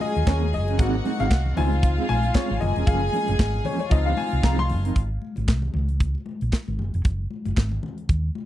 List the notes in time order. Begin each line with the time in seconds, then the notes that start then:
Already playing: F#3 C#4 F4 G#4 F5 G#5
0.00 D#5, open hi-hat, high conga
0.15 D#2, muted clean electric guitar stroke, closed hi-hat
0.26 D#2 A#3 C#4 F#4 A#4 C#5, kick, snare, clap, closed hi-hat, muted conga
0.41 muted clean electric guitar stroke, muted conga, high conga
0.53 F#1 D#5, muted clean electric guitar stroke, open hi-hat, low conga
0.67 A#3 C#4 F#4 C5, closed hi-hat
0.78 G#1 F#3 A#3 C4 D#4 F#4 G#4 F#5, kick, closed hi-hat, muted conga
0.95 muted conga
1.04 F#3 C4 D#4 G#4, open hi-hat, high conga
1.19 G#1 F#3 C4 D#4 G#4 F5, closed hi-hat, high conga
1.31 C2, kick, snare, clap, closed hi-hat, muted conga
1.45 muted clean electric guitar stroke, low conga
1.56 C#2 G#3 C4 D#4 F4 G#4 F5 G#5, open hi-hat, high conga, low conga
1.71 muted clean electric guitar stroke, closed hi-hat
1.83 muted clean electric guitar stroke, kick, closed hi-hat
1.97 G#3 C4 F4 G#4, muted conga
2.09 A#1 G#5, open hi-hat, high conga
2.23 muted clean electric guitar stroke, closed hi-hat
2.35 G#3 C4 F4 G#4 C#5, kick, snare, clap, closed hi-hat, muted conga
2.49 G#1, muted clean electric guitar stroke, high conga
2.59 F#1 G#3 A#3 F4 G#4 D#5 G#5, muted clean electric guitar stroke, open hi-hat, low conga
2.76 F1 F3 A#3 C#4 A#4, closed hi-hat
2.87 F#1 F3 A#3 C#4 G#4 F5, kick, closed hi-hat, muted conga
3.01 muted conga
3.13 F3 A#3 C#4 G#4, open hi-hat, high conga
3.28 F#1 F3 A#3 C#4 G#4, closed hi-hat, high conga
3.39 G#1, muted clean electric guitar stroke, kick, snare, clap, closed hi-hat, muted conga, high conga
3.54 muted clean electric guitar stroke, low conga
3.65 F3 A#3 C#4 G#4 C#5, open hi-hat, high conga, low conga
3.79 C#5, muted clean electric guitar stroke, closed hi-hat
3.90 C#2 F3 C4 D#4 F4 D#5 F5, muted clean electric guitar stroke, kick, closed hi-hat
4.05 F3 C4 D#4 G#4 F5, muted conga
4.17 G#5, open hi-hat, high conga
4.31 C2, muted clean electric guitar stroke, closed hi-hat
4.43 C2 F3 C4 D#4 G#4 A#5, kick, snare, clap, closed hi-hat
4.58 C6, muted clean electric guitar stroke, muted conga, high conga
4.69 F#1, muted clean electric guitar stroke, open hi-hat, low conga
4.84 F3 C4 D#4 A#4, closed hi-hat
4.96 G#1, kick, closed hi-hat
5.22 high conga
5.36 G#1, closed hi-hat, high conga
5.48 C2, kick, snare, clap, closed hi-hat, high conga
5.62 muted conga, low conga
5.74 C#2, high conga, low conga
5.89 closed hi-hat
6.00 kick, closed hi-hat, muted conga
6.15 muted conga
6.26 high conga
6.41 A#1, closed hi-hat
6.52 kick, snare, clap, closed hi-hat, muted conga
6.68 G#1, muted conga, high conga
6.79 F#1, low conga
6.94 F1, closed hi-hat
7.04 F#1, kick, closed hi-hat, muted conga
7.31 high conga
7.45 F#1, closed hi-hat, high conga
7.57 G#1, kick, snare, clap, closed hi-hat, high conga
7.71 muted conga, low conga
7.83 high conga, low conga
7.98 closed hi-hat
8.09 D#2, kick, closed hi-hat
8.35 high conga